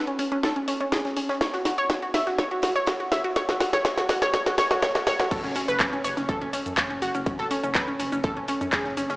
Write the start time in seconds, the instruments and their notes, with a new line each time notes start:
0.07 synth arpeggio sound C#4, closed hi-hat
0.19 synth arpeggio sound C#4, closed hi-hat, open hi-hat
0.32 synth arpeggio sound C#4, closed hi-hat
0.43 synth arpeggio sound A4, kick, snare, closed hi-hat
0.56 synth arpeggio sound C#4, closed hi-hat
0.68 synth arpeggio sound C#4, closed hi-hat, open hi-hat
0.80 synth arpeggio sound C#4, closed hi-hat
0.92 synth arpeggio sound G#4, kick, snare, closed hi-hat
1.05 synth arpeggio sound C#4, snare, closed hi-hat
1.17 synth arpeggio sound C#4, closed hi-hat, open hi-hat
1.29 synth arpeggio sound C#4, snare, closed hi-hat
1.41 synth arpeggio sound C#5, kick, snare, closed hi-hat
1.53 synth arpeggio sound F#4, snare, closed hi-hat
1.65 synth arpeggio sound F#4, snare, closed hi-hat, open hi-hat
1.78 synth arpeggio sound C#5, closed hi-hat
1.89 synth arpeggio sound F#4, kick, snare, closed hi-hat
2.02 synth arpeggio sound F#4, closed hi-hat
2.14 synth arpeggio sound E5, snare, closed hi-hat, open hi-hat
2.27 synth arpeggio sound F#4, snare, closed hi-hat
2.38 synth arpeggio sound C#5, kick, snare, closed hi-hat
2.51 synth arpeggio sound F#4, closed hi-hat
2.62 synth arpeggio sound F#4, snare, closed hi-hat, open hi-hat
2.76 synth arpeggio sound C#5, closed hi-hat
2.87 synth arpeggio sound F#4, kick, snare, closed hi-hat
3.00 synth arpeggio sound F#4, closed hi-hat
3.12 synth arpeggio sound E5, snare, closed hi-hat, open hi-hat
3.24 synth arpeggio sound F#4, closed hi-hat
3.36 synth arpeggio sound C#5, kick, snare, closed hi-hat
3.48 synth arpeggio sound F#4, snare, closed hi-hat
3.60 synth arpeggio sound F#4, snare, closed hi-hat, open hi-hat
3.73 synth arpeggio sound C#5, snare, closed hi-hat
3.85 synth arpeggio sound C#5, kick, snare, closed hi-hat
3.98 synth arpeggio sound F#4, snare, closed hi-hat
4.09 synth arpeggio sound F#4, snare, closed hi-hat, open hi-hat
4.22 synth arpeggio sound C#5, snare, closed hi-hat
4.34 synth arpeggio sound C#5, kick, snare, closed hi-hat
4.46 synth arpeggio sound F#4, snare, closed hi-hat
4.58 synth arpeggio sound C#5, snare, closed hi-hat, open hi-hat
4.71 synth arpeggio sound F#4, snare, closed hi-hat
4.82 synth arpeggio sound C#5, kick, snare, closed hi-hat
4.95 synth arpeggio sound F#4, snare, closed hi-hat
5.07 synth arpeggio sound C#5, snare, closed hi-hat, open hi-hat
5.20 synth arpeggio sound F#4, snare, closed hi-hat
5.31 synth arpeggio sound A4, kick, closed hi-hat, crash, shaker
5.44 analog synth bass F#1, synth arpeggio sound C#4, snare, closed hi-hat
5.55 synth arpeggio sound C#4, closed hi-hat, open hi-hat, shaker
5.68 analog synth bass F#1, synth arpeggio sound B4, closed hi-hat, shaker
5.80 synth arpeggio sound C#4, kick, snare, clap, closed hi-hat, shaker
5.93 synth arpeggio sound C#4, closed hi-hat
6.04 analog synth bass F#1, synth arpeggio sound C#5, closed hi-hat, open hi-hat, shaker
6.17 analog synth bass F#1, synth arpeggio sound C#4, snare, closed hi-hat, shaker
6.29 synth arpeggio sound A4, kick, closed hi-hat, shaker
6.41 analog synth bass F#1, synth arpeggio sound C#4, closed hi-hat
6.53 synth arpeggio sound C#4, closed hi-hat, open hi-hat, shaker
6.66 analog synth bass F#2, closed hi-hat, shaker
6.77 synth arpeggio sound C#4, kick, snare, clap, closed hi-hat, shaker
6.90 analog synth bass F#1, synth arpeggio sound C#4, closed hi-hat
7.02 analog synth bass F#1, synth arpeggio sound F#4, closed hi-hat, open hi-hat, shaker
7.14 analog synth bass F#1, synth arpeggio sound C#4, closed hi-hat, shaker
7.26 synth arpeggio sound C#4, kick, closed hi-hat, shaker
7.38 analog synth bass F#1, synth arpeggio sound A4, snare, closed hi-hat
7.51 synth arpeggio sound C#4, closed hi-hat, open hi-hat, shaker
7.63 analog synth bass F#1, synth arpeggio sound C#4, closed hi-hat, shaker
7.75 synth arpeggio sound B4, kick, snare, clap, closed hi-hat, shaker
7.88 synth arpeggio sound C#4, closed hi-hat
8.00 analog synth bass F#1, synth arpeggio sound C#4, closed hi-hat, open hi-hat, shaker
8.12 analog synth bass F#1, synth arpeggio sound C#4, closed hi-hat, shaker
8.24 synth arpeggio sound A4, kick, closed hi-hat, shaker
8.37 analog synth bass F#1, synth arpeggio sound C#4, closed hi-hat
8.48 synth arpeggio sound C#4, closed hi-hat, open hi-hat, shaker
8.61 analog synth bass F#2, synth arpeggio sound C#4, closed hi-hat, shaker
8.72 synth arpeggio sound G#4, kick, snare, clap, closed hi-hat, shaker
8.85 analog synth bass F#1, synth arpeggio sound C#4, snare, closed hi-hat
8.97 analog synth bass F#1, synth arpeggio sound C#4, closed hi-hat, open hi-hat, shaker
9.09 analog synth bass F#1, synth arpeggio sound C#4, snare, closed hi-hat, shaker